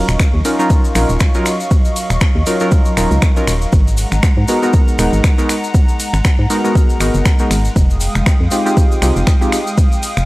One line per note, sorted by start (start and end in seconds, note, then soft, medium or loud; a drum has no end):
0.00 0.40 F#3 loud
0.00 3.69 F#3 medium
0.00 0.40 C#4 medium
0.00 0.41 D#4 medium
0.00 0.41 F4 loud
0.00 0.41 A#4 loud
0.00 3.69 D#5 medium
0.00 3.69 F5 medium
0.00 3.69 C#6 medium
0.09 0.16 D#1 loud
0.09 finger snap medium
0.09 shaker soft
0.20 finger snap loud
0.20 kick loud
0.20 ride medium
0.20 shaker medium
0.34 0.41 D#2 medium
0.45 0.56 F#3 medium
0.45 0.56 C#4 medium
0.45 0.56 D#4 medium
0.45 0.57 F4 medium
0.45 0.57 A#4 medium
0.45 open hi-hat loud
0.45 ride medium
0.45 shaker loud
0.59 0.93 F#3 medium
0.59 0.93 C#4 medium
0.59 0.93 D#4 medium
0.59 0.93 F4 medium
0.59 0.93 A#4 loud
0.59 shaker soft
0.70 kick loud
0.70 ride medium
0.70 shaker medium
0.85 shaker soft
0.95 1.05 A#1 loud
0.95 1.31 F#3 medium
0.95 1.31 C#4 medium
0.95 1.31 D#4 medium
0.95 1.31 F4 medium
0.95 1.31 A#4 medium
0.95 finger snap medium
0.95 open hi-hat loud
0.95 ride medium
0.95 shaker medium
1.09 1.17 D#1 loud
1.09 shaker soft
1.20 finger snap loud
1.20 kick loud
1.20 ride medium
1.20 shaker medium
1.34 1.50 F#3 medium
1.34 1.50 C#4 medium
1.34 1.50 D#4 medium
1.34 1.50 F4 medium
1.34 1.50 A#4 loud
1.34 shaker soft
1.46 finger snap medium
1.46 open hi-hat medium
1.46 ride medium
1.46 shaker medium
1.60 shaker soft
1.71 kick loud
1.71 ride medium
1.71 shaker medium
1.85 shaker soft
1.96 open hi-hat loud
1.96 ride medium
1.96 shaker loud
2.10 2.18 D#1 loud
2.10 finger snap medium
2.10 shaker soft
2.21 finger snap loud
2.21 kick loud
2.21 ride medium
2.21 shaker medium
2.35 2.43 D#2 medium
2.46 2.58 F#3 medium
2.46 2.58 C#4 medium
2.46 2.58 D#4 medium
2.46 2.58 F4 medium
2.46 2.58 A#4 medium
2.46 open hi-hat medium
2.46 ride medium
2.46 shaker medium
2.60 2.94 F#3 medium
2.60 2.94 C#4 medium
2.60 2.94 D#4 medium
2.60 2.94 F4 medium
2.60 2.94 A#4 loud
2.60 shaker soft
2.71 kick loud
2.71 ride medium
2.71 shaker medium
2.85 shaker soft
2.97 3.07 D#1 medium
2.97 3.33 F#3 medium
2.97 3.33 C#4 medium
2.97 3.33 D#4 medium
2.97 3.33 F4 medium
2.97 3.33 A#4 medium
2.97 finger snap medium
2.97 open hi-hat loud
2.97 ride medium
2.97 shaker medium
3.11 3.19 C#2 loud
3.11 shaker soft
3.22 finger snap loud
3.22 kick loud
3.22 ride medium
3.22 shaker medium
3.36 3.52 F#3 medium
3.36 3.52 C#4 medium
3.36 3.52 D#4 medium
3.36 3.52 F4 medium
3.36 3.52 A#4 loud
3.36 shaker soft
3.47 3.66 D#1 loud
3.47 finger snap medium
3.47 open hi-hat loud
3.47 ride medium
3.47 shaker loud
3.62 shaker soft
3.72 4.05 G#1 loud
3.72 10.25 G#3 medium
3.72 7.72 F#5 medium
3.72 7.72 A#5 medium
3.72 kick loud
3.72 ride medium
3.72 shaker medium
3.88 shaker soft
3.97 open hi-hat loud
3.97 ride medium
3.97 shaker medium
4.12 4.20 G#1 loud
4.12 finger snap medium
4.12 shaker soft
4.23 finger snap loud
4.23 kick loud
4.23 ride medium
4.23 shaker medium
4.37 4.45 G#2 medium
4.48 4.60 G#3 medium
4.48 4.60 B3 medium
4.48 4.60 D#4 medium
4.48 4.60 F#4 medium
4.48 4.60 A#4 medium
4.48 open hi-hat loud
4.48 ride medium
4.48 shaker loud
4.62 4.96 G#3 medium
4.62 4.96 B3 medium
4.62 4.96 D#4 medium
4.62 4.96 F#4 medium
4.62 4.96 A#4 loud
4.62 shaker soft
4.73 kick loud
4.73 ride medium
4.73 shaker medium
4.88 shaker soft
4.99 5.08 D#1 loud
4.99 5.35 G#3 medium
4.99 5.35 B3 medium
4.99 5.35 D#4 medium
4.99 5.35 F#4 medium
4.99 5.35 A#4 medium
4.99 finger snap medium
4.99 open hi-hat loud
4.99 ride medium
4.99 shaker medium
5.13 5.20 G#1 medium
5.13 shaker soft
5.24 finger snap loud
5.24 kick loud
5.24 ride medium
5.24 shaker medium
5.38 5.53 G#3 medium
5.38 5.53 B3 medium
5.38 5.53 D#4 medium
5.38 5.54 F#4 medium
5.38 5.54 A#4 loud
5.38 shaker soft
5.49 finger snap medium
5.49 open hi-hat loud
5.49 ride medium
5.49 shaker medium
5.64 shaker soft
5.74 kick loud
5.74 ride medium
5.74 shaker medium
5.89 shaker soft
6.00 open hi-hat loud
6.00 ride medium
6.00 shaker loud
6.14 6.21 G#1 loud
6.14 finger snap medium
6.14 shaker soft
6.25 finger snap loud
6.25 kick loud
6.25 ride medium
6.25 shaker medium
6.39 6.46 G#2 medium
6.50 6.61 G#3 medium
6.50 6.61 B3 medium
6.50 6.62 D#4 medium
6.50 6.62 F#4 medium
6.50 6.62 A#4 medium
6.50 open hi-hat loud
6.50 ride medium
6.50 shaker medium
6.64 6.98 G#3 medium
6.64 6.98 B3 medium
6.64 6.98 D#4 medium
6.64 6.98 F#4 medium
6.64 6.98 A#4 loud
6.64 shaker soft
6.75 kick loud
6.75 ride medium
6.75 shaker medium
6.89 shaker soft
7.00 7.10 G#1 medium
7.00 7.36 G#3 medium
7.00 7.36 B3 medium
7.00 7.36 D#4 medium
7.00 7.36 F#4 medium
7.00 7.36 A#4 medium
7.00 finger snap medium
7.00 open hi-hat loud
7.00 ride medium
7.00 shaker medium
7.14 7.22 F#1 loud
7.14 shaker soft
7.25 finger snap loud
7.25 kick loud
7.25 ride medium
7.25 shaker medium
7.39 7.55 G#3 medium
7.39 7.55 B3 medium
7.39 7.55 D#4 medium
7.39 7.55 F#4 medium
7.39 7.55 A#4 loud
7.39 shaker soft
7.51 7.69 G#1 loud
7.51 finger snap medium
7.51 open hi-hat loud
7.51 ride medium
7.51 shaker medium
7.65 shaker soft
7.76 8.08 F1 loud
7.76 10.25 F5 medium
7.76 10.25 G5 medium
7.76 10.25 D#6 medium
7.76 kick loud
7.76 ride medium
7.76 shaker medium
7.90 shaker soft
8.00 open hi-hat loud
8.00 ride medium
8.00 shaker loud
8.15 8.23 F1 loud
8.15 finger snap medium
8.15 shaker soft
8.26 finger snap loud
8.26 kick loud
8.26 ride medium
8.26 shaker soft
8.40 8.48 F2 medium
8.51 8.63 G#3 medium
8.51 8.63 C4 medium
8.51 8.63 D#4 medium
8.51 8.63 F4 medium
8.51 8.63 G4 medium
8.51 open hi-hat medium
8.51 ride medium
8.51 shaker medium
8.65 8.99 G#3 medium
8.65 8.99 C4 medium
8.65 8.99 D#4 medium
8.65 8.99 F4 medium
8.65 8.99 G4 loud
8.65 shaker soft
8.77 kick loud
8.77 ride medium
8.77 shaker medium
8.92 shaker soft
9.02 9.12 C2 loud
9.02 9.38 G#3 medium
9.02 9.38 C4 medium
9.02 9.38 D#4 medium
9.02 9.38 F4 medium
9.02 9.38 G4 medium
9.02 finger snap medium
9.02 open hi-hat loud
9.02 ride medium
9.02 shaker medium
9.16 9.24 F1 medium
9.16 shaker soft
9.27 finger snap loud
9.27 kick loud
9.27 ride medium
9.27 shaker soft
9.41 9.57 G#3 medium
9.41 9.57 C4 medium
9.41 9.57 D#4 medium
9.41 9.57 F4 medium
9.41 9.57 G4 loud
9.41 shaker soft
9.52 finger snap medium
9.52 open hi-hat medium
9.52 ride medium
9.52 shaker medium
9.67 shaker soft
9.78 kick loud
9.78 ride medium
9.78 shaker medium
9.92 shaker soft
10.03 open hi-hat loud
10.03 ride medium
10.03 shaker medium
10.17 10.25 F1 loud
10.17 finger snap medium
10.17 shaker soft